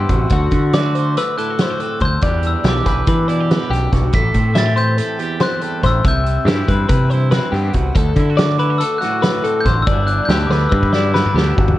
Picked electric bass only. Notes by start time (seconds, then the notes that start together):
0.10 A1
0.31 D2
0.52 D3
2.01 D2
2.23 E2
2.64 B1
2.85 B1
3.07 E3
3.70 B1
3.93 B1
4.13 A1
4.34 A2
5.84 A1
6.04 C2
6.45 G2
6.68 G2
6.89 C3
7.53 G2
7.74 C2
7.95 D2
8.16 D3
9.65 A1
9.86 G1
10.29 D2
10.49 D2
10.73 G2
11.34 D2
11.58 G1